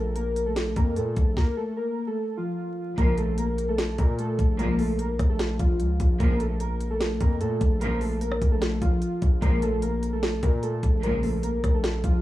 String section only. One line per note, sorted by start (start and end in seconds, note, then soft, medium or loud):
2.98 3.26 C#2 loud
2.98 3.26 A#2 loud
2.98 3.26 F3 loud
4.59 4.88 C#2 loud
4.59 4.88 A#2 loud
4.59 4.88 F3 loud
6.20 6.49 C#2 medium
6.20 6.49 A#2 loud
6.20 6.49 F3 loud
7.81 8.10 C#2 medium
7.81 8.10 A#2 loud
7.81 8.10 F3 loud
9.42 9.71 C#2 medium
9.42 9.71 A#2 loud
9.42 9.71 F3 loud
11.03 11.32 C#2 loud
11.03 11.32 A#2 loud
11.03 11.32 F3 loud